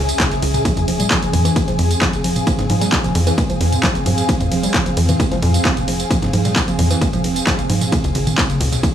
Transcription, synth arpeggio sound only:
0, 0, Header, 1, 2, 480
1, 0, Start_track
1, 0, Key_signature, -4, "minor"
1, 0, Tempo, 454545
1, 689, Time_signature, 4, 2, 24, 8
1, 9447, End_track
2, 0, Start_track
2, 0, Title_t, "Synth arpeggio sound"
2, 0, Program_c, 0, 84
2, 208, Note_on_c, 0, 49, 88
2, 279, Note_off_c, 0, 49, 0
2, 448, Note_on_c, 0, 49, 77
2, 519, Note_off_c, 0, 49, 0
2, 571, Note_on_c, 0, 49, 80
2, 611, Note_off_c, 0, 49, 0
2, 687, Note_on_c, 0, 53, 84
2, 730, Note_off_c, 0, 53, 0
2, 927, Note_on_c, 0, 53, 80
2, 970, Note_off_c, 0, 53, 0
2, 1051, Note_on_c, 0, 55, 82
2, 1091, Note_off_c, 0, 55, 0
2, 1166, Note_on_c, 0, 53, 79
2, 1210, Note_off_c, 0, 53, 0
2, 1291, Note_on_c, 0, 53, 82
2, 1390, Note_off_c, 0, 53, 0
2, 1406, Note_on_c, 0, 52, 81
2, 1478, Note_off_c, 0, 52, 0
2, 1531, Note_on_c, 0, 52, 110
2, 1630, Note_off_c, 0, 52, 0
2, 1647, Note_on_c, 0, 56, 84
2, 1718, Note_off_c, 0, 56, 0
2, 1771, Note_on_c, 0, 53, 105
2, 1838, Note_off_c, 0, 53, 0
2, 2126, Note_on_c, 0, 53, 86
2, 2169, Note_off_c, 0, 53, 0
2, 2367, Note_on_c, 0, 53, 78
2, 2410, Note_off_c, 0, 53, 0
2, 2607, Note_on_c, 0, 53, 83
2, 2650, Note_off_c, 0, 53, 0
2, 2847, Note_on_c, 0, 53, 78
2, 2890, Note_off_c, 0, 53, 0
2, 2971, Note_on_c, 0, 55, 80
2, 3011, Note_off_c, 0, 55, 0
2, 3086, Note_on_c, 0, 53, 83
2, 3130, Note_off_c, 0, 53, 0
2, 3211, Note_on_c, 0, 53, 75
2, 3310, Note_off_c, 0, 53, 0
2, 3326, Note_on_c, 0, 52, 78
2, 3398, Note_off_c, 0, 52, 0
2, 3451, Note_on_c, 0, 52, 107
2, 3550, Note_off_c, 0, 52, 0
2, 3567, Note_on_c, 0, 56, 81
2, 3638, Note_off_c, 0, 56, 0
2, 3691, Note_on_c, 0, 53, 98
2, 3757, Note_off_c, 0, 53, 0
2, 4048, Note_on_c, 0, 53, 85
2, 4091, Note_off_c, 0, 53, 0
2, 4288, Note_on_c, 0, 53, 78
2, 4331, Note_off_c, 0, 53, 0
2, 4529, Note_on_c, 0, 53, 83
2, 4571, Note_off_c, 0, 53, 0
2, 4769, Note_on_c, 0, 53, 82
2, 4811, Note_off_c, 0, 53, 0
2, 4894, Note_on_c, 0, 55, 82
2, 4932, Note_off_c, 0, 55, 0
2, 5009, Note_on_c, 0, 53, 82
2, 5051, Note_off_c, 0, 53, 0
2, 5134, Note_on_c, 0, 53, 77
2, 5232, Note_off_c, 0, 53, 0
2, 5249, Note_on_c, 0, 52, 76
2, 5319, Note_off_c, 0, 52, 0
2, 5373, Note_on_c, 0, 52, 105
2, 5471, Note_off_c, 0, 52, 0
2, 5488, Note_on_c, 0, 56, 84
2, 5559, Note_off_c, 0, 56, 0
2, 5613, Note_on_c, 0, 53, 105
2, 5678, Note_off_c, 0, 53, 0
2, 5969, Note_on_c, 0, 53, 83
2, 6011, Note_off_c, 0, 53, 0
2, 6208, Note_on_c, 0, 53, 76
2, 6250, Note_off_c, 0, 53, 0
2, 6447, Note_on_c, 0, 53, 88
2, 6490, Note_off_c, 0, 53, 0
2, 6688, Note_on_c, 0, 53, 80
2, 6730, Note_off_c, 0, 53, 0
2, 6813, Note_on_c, 0, 55, 81
2, 6852, Note_off_c, 0, 55, 0
2, 6928, Note_on_c, 0, 53, 85
2, 6970, Note_off_c, 0, 53, 0
2, 7052, Note_on_c, 0, 53, 77
2, 7151, Note_off_c, 0, 53, 0
2, 7169, Note_on_c, 0, 52, 79
2, 7239, Note_off_c, 0, 52, 0
2, 7293, Note_on_c, 0, 52, 107
2, 7391, Note_off_c, 0, 52, 0
2, 7408, Note_on_c, 0, 56, 88
2, 7479, Note_off_c, 0, 56, 0
2, 7533, Note_on_c, 0, 53, 104
2, 7598, Note_off_c, 0, 53, 0
2, 7887, Note_on_c, 0, 53, 84
2, 7930, Note_off_c, 0, 53, 0
2, 8127, Note_on_c, 0, 53, 78
2, 8170, Note_off_c, 0, 53, 0
2, 8368, Note_on_c, 0, 49, 85
2, 8410, Note_off_c, 0, 49, 0
2, 8607, Note_on_c, 0, 49, 76
2, 8650, Note_off_c, 0, 49, 0
2, 8732, Note_on_c, 0, 51, 81
2, 8772, Note_off_c, 0, 51, 0
2, 8847, Note_on_c, 0, 49, 87
2, 8890, Note_off_c, 0, 49, 0
2, 8970, Note_on_c, 0, 49, 80
2, 9070, Note_off_c, 0, 49, 0
2, 9086, Note_on_c, 0, 47, 78
2, 9158, Note_off_c, 0, 47, 0
2, 9211, Note_on_c, 0, 47, 105
2, 9310, Note_off_c, 0, 47, 0
2, 9326, Note_on_c, 0, 52, 85
2, 9398, Note_off_c, 0, 52, 0
2, 9447, End_track
0, 0, End_of_file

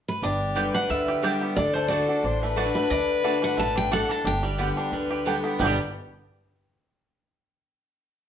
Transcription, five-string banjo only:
0, 0, Header, 1, 2, 480
1, 0, Start_track
1, 0, Key_signature, 1, "major"
1, 0, Tempo, 335758
1, 327, Time_signature, 4, 2, 24, 8
1, 11844, End_track
2, 0, Start_track
2, 0, Title_t, "Five-string banjo"
2, 0, Program_c, 0, 105
2, 332, Note_on_c, 0, 62, 65
2, 809, Note_on_c, 0, 67, 54
2, 1056, Note_off_c, 0, 62, 0
2, 1062, Note_on_c, 0, 62, 61
2, 1283, Note_on_c, 0, 55, 55
2, 1494, Note_off_c, 0, 67, 0
2, 1547, Note_on_c, 0, 67, 62
2, 1759, Note_off_c, 0, 62, 0
2, 1765, Note_on_c, 0, 62, 50
2, 1970, Note_off_c, 0, 55, 0
2, 2023, Note_on_c, 0, 59, 58
2, 2203, Note_off_c, 0, 67, 0
2, 2242, Note_off_c, 0, 62, 0
2, 2245, Note_off_c, 0, 59, 0
2, 2248, Note_on_c, 0, 62, 64
2, 2506, Note_on_c, 0, 57, 63
2, 2725, Note_off_c, 0, 62, 0
2, 2731, Note_on_c, 0, 62, 54
2, 2987, Note_off_c, 0, 62, 0
2, 2992, Note_on_c, 0, 62, 66
2, 3210, Note_off_c, 0, 62, 0
2, 3216, Note_on_c, 0, 62, 62
2, 3468, Note_off_c, 0, 57, 0
2, 3474, Note_on_c, 0, 57, 61
2, 3684, Note_off_c, 0, 62, 0
2, 3690, Note_on_c, 0, 62, 58
2, 3925, Note_off_c, 0, 57, 0
2, 3942, Note_on_c, 0, 57, 56
2, 4155, Note_off_c, 0, 62, 0
2, 4161, Note_on_c, 0, 62, 65
2, 4597, Note_off_c, 0, 57, 0
2, 4633, Note_off_c, 0, 62, 0
2, 4639, Note_on_c, 0, 62, 57
2, 4885, Note_off_c, 0, 62, 0
2, 4890, Note_on_c, 0, 62, 68
2, 5108, Note_on_c, 0, 57, 61
2, 5366, Note_off_c, 0, 62, 0
2, 5372, Note_on_c, 0, 62, 65
2, 5591, Note_off_c, 0, 62, 0
2, 5596, Note_on_c, 0, 62, 59
2, 5798, Note_off_c, 0, 57, 0
2, 5851, Note_off_c, 0, 62, 0
2, 5851, Note_on_c, 0, 62, 64
2, 6077, Note_off_c, 0, 62, 0
2, 6077, Note_on_c, 0, 62, 65
2, 6333, Note_on_c, 0, 55, 66
2, 6561, Note_on_c, 0, 67, 57
2, 6763, Note_off_c, 0, 62, 0
2, 6820, Note_on_c, 0, 62, 68
2, 6991, Note_off_c, 0, 55, 0
2, 7043, Note_on_c, 0, 55, 56
2, 7245, Note_off_c, 0, 67, 0
2, 7299, Note_on_c, 0, 67, 64
2, 7475, Note_off_c, 0, 62, 0
2, 7527, Note_on_c, 0, 62, 54
2, 7726, Note_off_c, 0, 55, 0
2, 7774, Note_on_c, 0, 59, 65
2, 7955, Note_off_c, 0, 67, 0
2, 7997, Note_off_c, 0, 59, 0
2, 8002, Note_off_c, 0, 62, 0
2, 8003, Note_on_c, 0, 55, 87
2, 8034, Note_on_c, 0, 59, 88
2, 8061, Note_on_c, 0, 62, 88
2, 8090, Note_on_c, 0, 67, 91
2, 8241, Note_off_c, 0, 55, 0
2, 8257, Note_off_c, 0, 59, 0
2, 8272, Note_off_c, 0, 62, 0
2, 8287, Note_off_c, 0, 67, 0
2, 11844, End_track
0, 0, End_of_file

